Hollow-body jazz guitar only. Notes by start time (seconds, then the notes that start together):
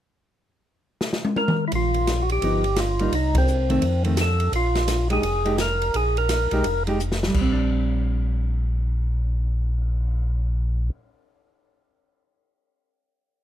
2.43 F3 B3 D#4
3.00 G3 A#3 D#4
3.69 D#3 A3 C4
4.05 D#3 A3 C4
5.10 G#3 D#4 G4
5.45 G#3 D#4 G4
6.53 G#3 D#4 G4
6.87 G#3 D#4 G4
7.28 G3
7.41 C4
7.52 D4